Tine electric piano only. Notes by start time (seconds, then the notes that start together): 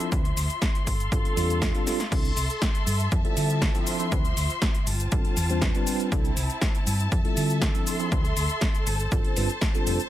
0.00 A4
0.11 F3 C4 D4 E4
1.11 G3 C4 D4 F4 A4
1.36 G3 C4 D4 F4 A4
1.74 G3 C4 D4 F4 A4
1.86 G3 C4 D4 F4 A4
2.11 G3 C4 D4 E4 A4
3.24 G3 C4 E4 F4 A4
3.74 F3 C4 D4 E4 A4
3.99 F3 C4 D4 E4 A4
4.12 C4 D4 B4
5.12 G3 C4 D4 F4 A4
5.50 G3 C4 D4 F4 C5
5.62 G3
5.75 G3 C4 D4 F4 B4
6.12 G3 C4 D4 E4 A4
7.24 G3 C4 E4 F4 A4
7.74 F3 C4 D4 E4 A4
7.99 F3 C4 D4 E4 A4
9.11 G3 C4 D4 F4 A4
9.36 G3 C4 D4 F4 B4
9.74 G3 C4 D4 F4 A4
9.86 G3 C4 D4 F4 A4